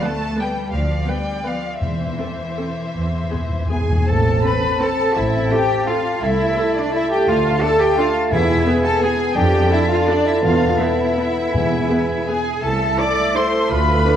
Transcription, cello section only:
0.02 0.38 A3 medium
0.39 0.73 G3 medium
0.73 1.07 F3 medium
1.07 1.44 G3 medium
1.44 1.80 F3 soft
1.82 3.71 E3 soft
3.71 4.04 G#4 medium
4.07 4.43 A4 medium
4.43 4.80 B4 medium
4.81 5.15 A4 medium
5.15 5.50 E4 medium
5.51 5.87 G4 medium
5.89 6.22 F4 medium
6.23 6.75 E4 medium
6.76 6.93 D4 medium
6.93 7.10 E4 medium
7.11 7.27 G4 medium
7.27 7.61 F4 medium
7.62 7.79 A4 medium
7.80 7.97 G4 medium
7.98 8.15 F4 medium
8.32 8.80 E4 medium
8.84 9.02 A4 medium
9.02 9.36 G#4 medium
9.36 9.71 G4 medium
9.71 9.89 E4 medium
9.90 10.08 F4 medium
10.08 10.26 D4 medium
10.26 10.43 E4 medium
10.43 10.79 F4 medium
10.80 12.28 E4 medium
12.27 12.62 G#4 medium
12.63 12.99 A4 medium
13.00 13.37 D5 loud
13.38 13.72 C5 medium
13.72 14.16 B4 medium

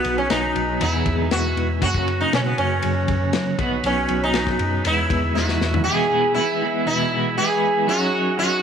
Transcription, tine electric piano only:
0.05 0.25 B1 medium
0.31 0.50 B1 medium
0.56 0.76 B1 medium
0.82 1.01 E2 medium
1.06 1.26 E2 medium
1.31 1.51 E2 medium
1.57 1.76 E2 medium
1.82 2.21 F#2 medium
2.33 2.52 B2 medium
2.58 2.78 F#2 medium
2.84 3.03 F#2 medium
3.09 3.28 F#2 medium
3.34 3.54 F#3 medium
3.59 3.78 B1 medium
3.84 4.04 B1 medium
4.09 4.29 B1 medium
4.35 4.54 B1 medium
4.60 4.80 F#2 medium
4.86 5.05 E2 medium
5.11 5.30 E2 medium
5.36 5.55 E2 medium
5.61 5.81 E2 medium

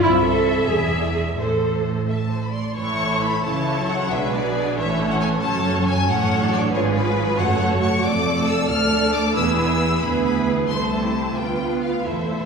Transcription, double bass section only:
0.04 0.66 C2 medium
0.69 1.38 E1 medium
1.38 2.54 A1 medium
2.77 3.40 A1 medium
3.44 4.09 C#2 medium
4.10 4.75 B1 medium
4.76 5.42 A1 medium
5.42 6.07 F#1 medium
6.08 6.74 A1 medium
6.73 7.37 G#1 medium
7.39 8.04 F#1 medium
8.04 8.69 F1 medium
8.70 9.36 D2 medium
9.36 10.00 E1 medium
10.02 10.68 D2 medium
10.67 11.35 C2 medium
11.35 12.03 D2 medium
12.05 12.45 E1 medium

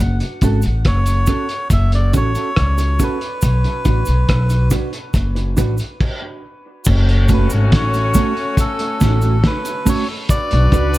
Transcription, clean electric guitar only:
0.43 0.59 C#4 medium
0.43 0.60 F#4 medium
0.43 0.60 A4 medium
1.28 1.45 C#4 medium
1.28 1.45 F#4 medium
1.28 1.46 A4 medium
2.13 2.31 C#4 medium
2.13 2.31 F#4 medium
2.13 2.31 A4 medium
2.35 2.49 C#4 soft
2.35 2.49 F#4 medium
2.35 2.48 A4 medium
2.78 muted clean electric guitar stroke soft
3.00 3.17 C#4 medium
3.00 3.17 F#4 medium
3.00 3.17 A4 medium
3.85 4.02 D4 medium
3.85 4.03 F#4 medium
3.85 4.03 B4 medium
4.71 4.88 D4 medium
4.71 4.89 F#4 medium
4.71 4.89 B4 medium
4.93 muted clean electric guitar stroke medium
5.35 muted clean electric guitar stroke soft
5.57 5.74 D4 medium
5.57 5.74 F#4 medium
5.57 5.75 B4 loud
7.29 7.46 A3 loud
7.29 7.47 C#4 medium
7.29 7.47 F#4 loud
8.15 8.32 A3 medium
8.15 8.32 C#4 medium
8.15 8.33 F#4 loud
9.01 9.18 A3 medium
9.01 9.18 C#4 medium
9.01 9.18 F#4 loud
9.22 9.36 A3 medium
9.22 9.36 C#4 medium
9.22 9.36 F#4 medium
9.65 muted clean electric guitar stroke soft
9.85 10.03 A3 medium
9.85 10.03 C#4 loud
9.85 10.04 F#4 medium
10.72 10.89 D4 medium
10.72 10.90 F#4 medium
10.72 10.90 B4 loud

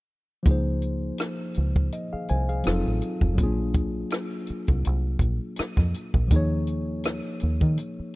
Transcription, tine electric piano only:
0.43 2.60 F3 medium
0.43 2.61 A#3 soft
0.43 2.62 D#4 medium
0.49 1.55 G#4 medium
0.49 1.56 C5 medium
1.93 2.11 D#5 soft
2.13 2.29 G#4 soft
2.13 2.28 F5 medium
2.30 2.48 C5 soft
2.30 2.48 G#5 medium
2.49 2.84 G#4 soft
2.49 2.83 F5 medium
2.64 3.34 F#3 medium
2.64 3.38 C4 medium
2.64 3.39 D#4 medium
2.64 3.39 F4 medium
2.68 3.40 A4 medium
3.35 6.25 F#3 medium
3.35 6.26 A#3 medium
3.39 3.46 C4 soft
3.39 6.28 F4 soft
3.43 6.31 D4 medium
3.43 6.30 G#4 medium
6.28 8.15 F3 medium
6.28 8.15 A#3 medium
6.32 8.15 D#4 medium
6.32 8.15 G#4 medium
6.32 8.15 C#5 medium

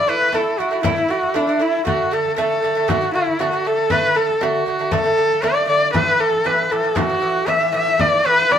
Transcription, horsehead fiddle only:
0.00 0.11 D5 medium
0.09 0.37 B4 medium
0.35 0.61 A4 medium
0.59 0.84 F#4 medium
0.84 1.12 E4 medium
1.10 1.37 F#4 medium
1.36 1.63 D4 medium
1.61 1.86 E4 medium
1.86 2.14 F#4 medium
2.13 2.37 A4 medium
2.38 2.90 A4 medium
2.89 3.14 F#4 medium
3.15 3.42 E4 medium
3.40 3.68 F#4 medium
3.67 3.93 A4 medium
3.91 4.18 B4 medium
4.16 4.44 A4 medium
4.43 4.93 F#4 medium
4.92 5.45 A4 loud
5.44 5.68 D5 medium
5.69 5.93 D5 medium
5.94 6.22 B4 medium
6.20 6.47 A4 medium
6.46 6.73 B4 medium
6.71 6.99 A4 medium
6.98 7.50 F#4 medium
7.49 7.74 E5 medium
7.76 8.02 E5 loud
8.00 8.27 D5 medium
8.26 8.53 B4 loud
8.52 8.59 D5 medium

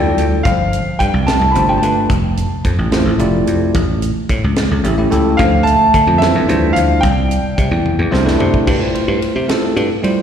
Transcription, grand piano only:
0.00 0.48 G5 loud
0.43 1.01 F5 medium
0.99 1.28 G5 medium
1.27 1.50 A5 medium
1.51 1.61 B5 medium
1.59 1.70 A5 medium
1.69 1.79 G5 medium
1.78 1.88 A5 medium
5.37 5.63 F5 medium
5.63 6.21 A5 loud
6.18 6.70 E5 medium
6.73 7.03 F5 medium
7.01 8.07 G5 medium

